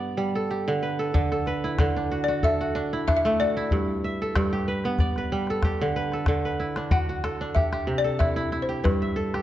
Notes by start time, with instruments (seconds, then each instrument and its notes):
Already playing: kora G2 A3 B3 G4 B4 D5
0.17 kora G3
0.35 kora A4
0.51 kora G4
0.68 kora D3
0.83 kora B4
0.99 kora A4
1.14 kora D3, calabash thump
1.32 kora A4, calabash click
1.46 kora B4, calabash click
1.64 kora E4
1.79 kora D3, calabash thump, calabash click
1.96 kora D4
2.11 kora F#4
2.24 balafon D5
2.28 kora F#4
2.43 kora A4, balafon E5, calabash thump
2.61 kora F#4
2.75 kora D4, calabash click
2.93 kora E4
3.07 kora D4, balafon E5, calabash thump, calabash click
3.17 balafon E5
3.25 kora A3, balafon E5, calabash click
3.40 kora F#4, balafon D5
3.57 kora E4
3.71 kora G2, calabash thump
4.04 kora E5
4.22 kora A4
4.36 kora G2, calabash thump, calabash click
4.53 kora G4
4.68 kora B4
4.84 kora B3, calabash click
4.99 kora D5, calabash thump, calabash click
5.16 kora B4, calabash click
5.32 kora G3
5.47 kora A4, calabash click
5.62 kora G4, calabash thump, calabash click
5.81 kora D3
5.96 kora B4
6.12 kora A4, calabash click
6.26 kora D3, calabash thump, calabash click
6.45 kora B4
6.60 kora E4
6.76 kora D4, calabash click
6.91 kora F#4, balafon F#5, calabash thump
7.09 kora F#4
7.24 kora A4, calabash click
7.41 kora D4
7.55 kora G4, balafon E5, calabash thump, calabash click
7.72 kora G4, calabash click
7.87 kora C3
7.98 balafon D5
8.04 kora A4
8.19 kora E4, balafon E5, calabash thump, calabash click
8.36 kora E4
8.52 kora E4, calabash click
8.62 balafon C5
8.69 kora G4
8.84 kora G2, balafon B4, calabash thump, calabash click
9.02 kora E5
9.16 kora A4
9.34 kora G4, calabash click